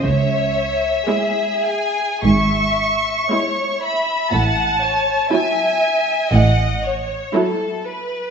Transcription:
<<
  \new Staff \with { instrumentName = "Violin section" } { \time 4/4 \key cis \minor \tempo 4 = 59 e''4. gis''8 cis'''4. b''8 | a''4 gis''4 fis''8 r4. | }
  \new Staff \with { instrumentName = "Violin section" } { \time 4/4 \key cis \minor cis''4 gis'4 e''4 cis''8 e''8 | fis''8 cis''8 e''4 dis''8 cis''8 a'8 b'8 | }
  \new Staff \with { instrumentName = "Viola section" } { \time 4/4 \key cis \minor r4 <gis e'>4 r4 <gis e'>4 | r4 <fis e'>4 r4 <fis e'>4 | }
  \new Staff \with { instrumentName = "Cello section" } { \clef bass \time 4/4 \key cis \minor cis4 r4 gis,4 r4 | a,4 r4 a,4 r4 | }
  \new Staff \with { instrumentName = "Double bass section" } { \clef bass \time 4/4 \key cis \minor cis,4 r4 gis,,4 r4 | a,,4 r4 a,,4 r4 | }
>>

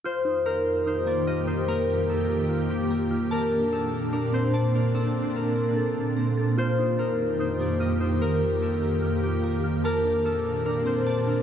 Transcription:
<<
  \new Staff \with { instrumentName = "Harp" } { \time 4/4 \key f \mixolydian \tempo 4 = 147 c''4 bes'4 c''8 d''8 ees''8 c''8 | bes'4 a'4. g'4. | bes'4 a'4 bes'8 c''8 d''8 bes'8 | a'4 bes'4 r2 |
c''4 bes'4 c''8 d''8 ees''8 c''8 | bes'4 a'4. g'4. | bes'4 a'4 bes'8 c''8 d''8 bes'8 | }
  \new Staff \with { instrumentName = "Synth keys" } { \time 4/4 \key f \mixolydian f'8 ees'4. ees'8 bes8 f'8 ees'8 | bes4. bes8 f'4 bes8 f'8 | a''8 d'4. d'8 c'8 a''8 d'8 | c'4. c'8 a'4 c'8 a'8 |
f'8 ees'4. ees'8 bes8 f'8 ees'8 | bes4. bes8 f'4 bes8 f'8 | a''8 d'4. d'8 c'8 a''8 d'8 | }
  \new Staff \with { instrumentName = "Ambient pad" } { \time 4/4 \key f \mixolydian <f, ees bes g'>1~ | <f, ees bes g'>1 | <bes, bes c' d'>1~ | <bes, bes c' d'>1 |
<f, ees bes g'>1~ | <f, ees bes g'>1 | <bes, bes c' d'>1 | }
>>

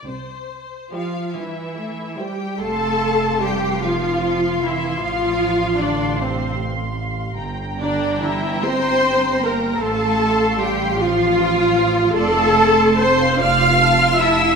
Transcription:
<<
  \new Staff \with { instrumentName = "Violin section" } { \time 6/8 \key c \major \tempo 4. = 50 c''4 f''8 e''4 g''8 | \key f \major a''4 g''8 f''4 e''8 | f''4 d''8 c''8 r4 | r8 d''8 e''8 c'''4 bes''8 |
a''4 g''8 f''4. | \key d \dorian a''4 c'''8 f'''4 e'''8 | }
  \new Staff \with { instrumentName = "Violin section" } { \time 6/8 \key c \major << { r4 <g' c''>8 r4 <g' c''>8 | \key f \major c'''2.~ | c'''2. | bes''2. |
c'''2. | \key d \dorian c'''2. | } \\ { r2. | f''2.~ | f''2. | g''2. |
f''2. | d''16 f''16 a''16 c'''16 a''16 f''16 d''16 f''16 a''16 c'''16 a''16 f''16 | } >> }
  \new Staff \with { instrumentName = "Viola section" } { \time 6/8 \key c \major << { r4 <g e' f'>8 e'4 g'8 | \key f \major a'4 g'8 f'4 e'8 | f'4 d'8 c'8 r4 | r8 d'8 e'8 c''4 bes'8 |
a'4 g'8 f'4. | \key d \dorian a'4 c''8 f''4 e''8 | } \\ { r4. e8 a8 g8 | r2. | r2. | r2. |
r2. | r2. | } >> }
  \new Staff \with { instrumentName = "Cello section" } { \clef bass \time 6/8 \key c \major << { r4 f8 e4 g8 | \key f \major a4 g8 f4 e8 | f4 d8 c8 r4 | r8 d8 e8 c'4 bes8 |
a4 g8 f4. | \key d \dorian a4 c'8 f'4 e'8 | } \\ { c4 r8 g,4. | r2. | r2. | r2. |
r2. | r2. | } >> }
  \new Staff \with { instrumentName = "Double bass section" } { \clef bass \time 6/8 \key c \major c,4 r2 | \key f \major f,,2. | a,,2. | g,,2. |
a,,2. | \key d \dorian f,,4. f,,4. | }
>>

